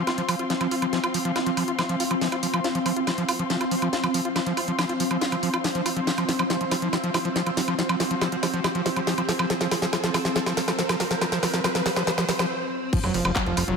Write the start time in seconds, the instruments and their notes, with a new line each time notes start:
Already playing: string section C4 F4 F5 C6, ambient pad C4, riser
0.07 acid bass F4, snare, closed hi-hat, high woodblock
0.18 acid bass F3, closed hi-hat
0.29 acid bass F3, open hi-hat, high woodblock
0.39 acid bass F4, closed hi-hat
0.50 acid bass F3, snare, closed hi-hat
0.61 acid bass F3, closed hi-hat, high woodblock
0.71 acid bass F4, open hi-hat
0.82 acid bass F3, closed hi-hat, high woodblock
0.93 acid bass F3, snare, closed hi-hat
1.04 acid bass F4, closed hi-hat, high woodblock
1.14 acid bass F3, open hi-hat
1.25 acid bass F3, closed hi-hat
1.36 acid bass F4, snare, closed hi-hat, high woodblock
1.46 acid bass F3, closed hi-hat
1.57 acid bass F3, open hi-hat, high woodblock
1.68 acid bass F4, closed hi-hat
1.79 acid bass F3, snare, closed hi-hat, high woodblock
1.89 acid bass F3, closed hi-hat
2.00 acid bass F4, open hi-hat
2.11 acid bass F3, closed hi-hat, high woodblock
2.21 acid bass F3, snare, open hi-hat
2.32 acid bass F4, closed hi-hat, high woodblock
2.43 acid bass F3, open hi-hat
2.54 acid bass F3, closed hi-hat, high woodblock
2.64 acid bass F4, snare, closed hi-hat
2.75 acid bass F3, closed hi-hat
2.86 acid bass F3, open hi-hat, high woodblock
2.96 acid bass F4, closed hi-hat
3.07 acid bass F3, snare, closed hi-hat, high woodblock
3.18 acid bass F3, closed hi-hat
3.29 acid bass F4, open hi-hat, high woodblock
3.39 acid bass F3, closed hi-hat
3.50 acid bass F3, snare, closed hi-hat
3.61 acid bass F4, closed hi-hat, high woodblock
3.71 acid bass F3, open hi-hat
3.82 acid bass F3, closed hi-hat, high woodblock
3.93 acid bass F4, snare, closed hi-hat
4.04 acid bass F3, closed hi-hat, high woodblock
4.14 acid bass F3, open hi-hat
4.25 acid bass F4, closed hi-hat
4.36 acid bass F3, snare, closed hi-hat, high woodblock
4.46 acid bass F3, closed hi-hat
4.57 acid bass F4, open hi-hat, high woodblock
4.68 acid bass F3, closed hi-hat
4.79 acid bass F3, snare, closed hi-hat, high woodblock
4.89 acid bass F4, closed hi-hat
5.00 acid bass F3, open hi-hat
5.11 acid bass F3, closed hi-hat, high woodblock
5.21 acid bass F4, snare, closed hi-hat
5.32 acid bass F3, closed hi-hat, high woodblock
5.43 acid bass F3, open hi-hat
5.54 acid bass F4, closed hi-hat, high woodblock
5.64 acid bass F3, snare, open hi-hat
5.75 acid bass F3, closed hi-hat
5.86 acid bass F4, open hi-hat, high woodblock
5.96 acid bass F3, closed hi-hat
6.07 acid bass F3, snare, closed hi-hat
6.18 acid bass F3, closed hi-hat, high woodblock
6.29 acid bass F3, snare, open hi-hat
6.39 acid bass F3, closed hi-hat, high woodblock
6.50 acid bass F3, snare, closed hi-hat
6.61 acid bass F3, closed hi-hat
6.71 acid bass F3, snare, open hi-hat, high woodblock
6.82 acid bass F3, closed hi-hat
6.93 acid bass F3, snare, closed hi-hat, high woodblock
7.04 acid bass F3, closed hi-hat
7.14 acid bass F3, snare, open hi-hat, high woodblock
7.25 acid bass F3, closed hi-hat
7.36 acid bass F3, snare, closed hi-hat
7.46 acid bass F3, closed hi-hat, high woodblock
7.57 acid bass F3, snare, open hi-hat
7.68 acid bass F3, closed hi-hat, high woodblock
7.79 acid bass F3, snare, closed hi-hat
7.89 acid bass F3, closed hi-hat, high woodblock
8.00 acid bass F3, snare, open hi-hat
8.11 acid bass F3, closed hi-hat
8.21 acid bass F3, snare, closed hi-hat, high woodblock
8.32 acid bass F3, closed hi-hat
8.43 acid bass F3, snare, open hi-hat, high woodblock
8.54 acid bass F3, closed hi-hat
8.64 acid bass F3, snare, closed hi-hat, high woodblock
8.75 acid bass F3, closed hi-hat
8.86 acid bass F3, snare, open hi-hat
8.96 acid bass F3, closed hi-hat, high woodblock
9.07 acid bass F3, snare, open hi-hat
9.18 acid bass F3, closed hi-hat, high woodblock
9.29 acid bass F3, snare, open hi-hat
9.39 acid bass F3, closed hi-hat, high woodblock
9.50 acid bass F3, snare, closed hi-hat
9.61 acid bass F3, snare, closed hi-hat
9.71 acid bass F3, snare, open hi-hat, high woodblock
9.82 acid bass F3, snare, closed hi-hat
9.93 acid bass F3, snare, closed hi-hat, high woodblock
10.04 acid bass F3, snare, closed hi-hat
10.14 acid bass F3, snare, open hi-hat, high woodblock
10.25 acid bass F3, snare, closed hi-hat
10.36 acid bass F3, snare, closed hi-hat
10.46 acid bass F3, snare, closed hi-hat, high woodblock
10.57 acid bass F3, snare, open hi-hat
10.68 acid bass F3, snare, closed hi-hat, high woodblock
10.79 acid bass F3, snare, closed hi-hat
10.89 acid bass F3, snare, closed hi-hat, high woodblock
11.00 acid bass F3, snare, open hi-hat
11.11 acid bass F3, snare, closed hi-hat
11.21 acid bass F3, snare, closed hi-hat, high woodblock
11.32 acid bass F3, snare, closed hi-hat
11.43 acid bass F3, snare, open hi-hat, high woodblock
11.54 acid bass F3, snare, closed hi-hat
11.64 acid bass F3, snare, closed hi-hat, high woodblock
11.75 acid bass F3, snare, closed hi-hat
11.86 acid bass F3, snare, open hi-hat
11.96 acid bass F3, snare, closed hi-hat, high woodblock
12.07 acid bass F3, snare, closed hi-hat
12.18 acid bass F3, snare, closed hi-hat, high woodblock
12.29 acid bass F3, snare, open hi-hat
12.39 acid bass F3, snare, closed hi-hat, high woodblock
12.93 acid bass F3, string section C4, ambient pad F4, kick, closed hi-hat, crash, sub drop
13.04 analog synth bass F1, acid bass F#3, closed hi-hat, high woodblock
13.10 analog synth bass F1, acid bass F3, string section F4
13.14 string section F5, open hi-hat
13.25 analog synth bass F1, acid bass F3, closed hi-hat, high woodblock
13.36 acid bass F#3, kick, clap, closed hi-hat
13.46 analog synth bass F1, acid bass F3, closed hi-hat
13.57 analog synth bass F1, acid bass F3, open hi-hat, high woodblock
13.61 string section C6
13.68 analog synth bass F1, acid bass F#3